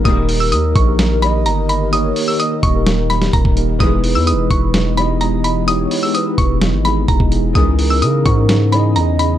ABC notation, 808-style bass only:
X:1
M:4/4
L:1/16
Q:1/4=128
K:D#phr
V:1 name="808-style bass" clef=bass
D,,,4 D,,2 A,,,6 =G,,,4- | =G,,,2 z4 D,,,6 D,,, D,,,3 | E,,,3 E,,3/2 E,,,3/2 E,,,8- E,,,2- | E,,,2 z4 E,,,3 G,,,3 E,,, E,,,3 |
C,,4 C,2 G,,6 E,,4 |]